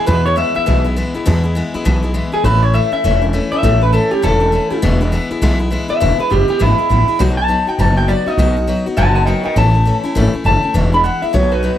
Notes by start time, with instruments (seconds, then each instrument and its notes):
0.06 steel-string acoustic guitar E2 B2 E3 G#3 B3 E4, upright bass E2, clean electric guitar B4
0.25 steel-string acoustic guitar E3 G#3 B3 E4, clean electric guitar C#5
0.36 steel-string acoustic guitar E3 G#3 B3 E4, clean electric guitar E5
0.54 steel-string acoustic guitar E3 G#3 B3 E4, clean electric guitar E5, muted upright bass stroke
0.66 upright bass B1, steel-string acoustic guitar E2 B2 E3 G#3 B3 E4
0.84 steel-string acoustic guitar E3 G#3 B3 E4
0.96 steel-string acoustic guitar E3 G#3 B3 E4
1.14 steel-string acoustic guitar E3 G#3 B3 E4, muted upright bass stroke
1.26 steel-string acoustic guitar E2 B2 E3 G#3 B3 E4, upright bass E2
1.43 steel-string acoustic guitar E3 G#3 B3 E4
1.55 steel-string acoustic guitar E3 G#3 B3 E4
1.74 steel-string acoustic guitar E3 G#3 B3 E4, muted upright bass stroke
1.85 upright bass B1, steel-string acoustic guitar E2 B2 E3 G#3 B3 E4
2.03 steel-string acoustic guitar E3 G#3 B3 E4
2.14 steel-string acoustic guitar E3 G#3 B3 E4
2.32 steel-string acoustic guitar E3 G#3 B3 E4, clean electric guitar G#4, muted upright bass stroke
2.44 upright bass A1, steel-string acoustic guitar A2 E3 A3 C#4 E4, clean electric guitar B4
2.62 steel-string acoustic guitar A3 C#4 E4, clean electric guitar C#5
2.73 steel-string acoustic guitar E3 A3 C#4 E4, clean electric guitar E5
2.92 steel-string acoustic guitar A3 C#4 E4, clean electric guitar E5, muted upright bass stroke
3.04 upright bass E1, steel-string acoustic guitar A2 E3 A3 C#4 E4
3.22 steel-string acoustic guitar A3 C#4 E4
3.33 steel-string acoustic guitar E3 A3 C#4 E4
3.52 steel-string acoustic guitar A3 C#4 E4, clean electric guitar E5, muted upright bass stroke
3.63 upright bass A1, steel-string acoustic guitar A2 E3 A3 C#4 E4
3.82 steel-string acoustic guitar A3 C#4 E4, clean electric guitar B4
3.93 steel-string acoustic guitar E3 A3 C#4 E4, clean electric guitar A4
4.11 steel-string acoustic guitar A3 C#4 E4, clean electric guitar G4, muted upright bass stroke
4.22 upright bass E1, steel-string acoustic guitar A2 E3 A3 C#4 E4, clean electric guitar A4
4.40 steel-string acoustic guitar A3 C#4 E4
4.52 steel-string acoustic guitar E3 A3 C#4 E4
4.70 steel-string acoustic guitar A3 C#4 E4, muted upright bass stroke
4.82 upright bass E1, steel-string acoustic guitar E2 B2 E3 G#3 B3 E4
5.01 steel-string acoustic guitar E3 G#3 B3 E4
5.12 steel-string acoustic guitar E3 G#3 B3 E4
5.31 steel-string acoustic guitar E3 G#3 B3 E4, muted upright bass stroke
5.42 upright bass B1, steel-string acoustic guitar E2 B2 E3 G#3 B3 E4
5.59 steel-string acoustic guitar E3 G#3 B3 E4
5.71 steel-string acoustic guitar E3 G#3 B3 E4
5.88 steel-string acoustic guitar E3 G#3 B3 E4, clean electric guitar E5, muted upright bass stroke
6.00 upright bass E1, steel-string acoustic guitar E2 B2 E3 G#3 B3 E4
6.18 steel-string acoustic guitar E3 G#3 B3 E4, clean electric guitar B4, muted upright bass stroke
6.30 upright bass F#1, steel-string acoustic guitar E3 G#3 B3 E4, clean electric guitar G4
6.48 steel-string acoustic guitar E3 G#3 B3 E4, clean electric guitar G4
6.59 upright bass G#1, steel-string acoustic guitar E2 B2 E3 G#3 B3 E4, clean electric guitar E4
6.78 steel-string acoustic guitar E3 G#3 B3 E4, muted upright bass stroke
6.90 upright bass A1, steel-string acoustic guitar E3 G#3 B3 E4
7.08 steel-string acoustic guitar E3 G#3 B3 E4
7.19 upright bass B1, steel-string acoustic guitar B2 F#3 B3 D#4 F#4
7.37 steel-string acoustic guitar B3 D#4 F#4, clean electric guitar A5
7.48 steel-string acoustic guitar F#3 B3 D#4 F#4
7.67 steel-string acoustic guitar B3 D#4 F#4, clean electric guitar G5, muted upright bass stroke
7.78 upright bass F#1, steel-string acoustic guitar B2 F#3 B3 D#4 F#4, clean electric guitar A5
7.97 steel-string acoustic guitar B3 D#4 F#4, clean electric guitar G5
8.08 steel-string acoustic guitar F#3 B3 D#4 F#4, clean electric guitar D5
8.26 steel-string acoustic guitar B3 D#4 F#4, clean electric guitar D#5, muted upright bass stroke
8.37 upright bass B1, steel-string acoustic guitar B2 F#3 B3 D#4 F#4
8.56 steel-string acoustic guitar B3 D#4 F#4
8.67 steel-string acoustic guitar F#3 B3 D#4 F#4
8.86 steel-string acoustic guitar B3 D#4 F#4, muted upright bass stroke
8.97 upright bass F#1, steel-string acoustic guitar B2 F#3 B3 D#4 F#4, clean electric guitar F#5 A5
9.15 steel-string acoustic guitar B3 D#4 F#4, clean electric guitar F#5 A5
9.26 steel-string acoustic guitar F#3 B3 D#4 F#4, clean electric guitar D#5 G5
9.43 steel-string acoustic guitar B3 D#4 F#4, clean electric guitar D#5 G5, muted upright bass stroke
9.56 upright bass A1, steel-string acoustic guitar A2 E3 A3 C#4 E4, clean electric guitar A5
9.74 steel-string acoustic guitar A3 C#4 E4
9.85 steel-string acoustic guitar E3 A3 C#4 E4
10.04 steel-string acoustic guitar A3 C#4 E4, muted upright bass stroke
10.15 upright bass G#1, steel-string acoustic guitar A2 E3 A3 C#4 E4
10.33 steel-string acoustic guitar A3 C#4 E4, muted upright bass stroke
10.44 upright bass F#1, steel-string acoustic guitar E3 A3 C#4 E4, clean electric guitar A5
10.63 steel-string acoustic guitar A3 C#4 E4, muted upright bass stroke
10.74 upright bass E1, steel-string acoustic guitar E2 B2 E3 G#3 B3 E4
10.92 steel-string acoustic guitar E3 G#3 B3 E4, clean electric guitar B5
11.04 steel-string acoustic guitar E3 G#3 B3 E4, clean electric guitar F#5
11.22 steel-string acoustic guitar E3 G#3 B3 E4, clean electric guitar E5, muted upright bass stroke
11.33 upright bass B1, steel-string acoustic guitar B2 F#3 B3 D#4 F#4, clean electric guitar C#5
11.52 steel-string acoustic guitar B3 D#4 F#4, clean electric guitar B4
11.63 steel-string acoustic guitar F#3 B3 D#4 F#4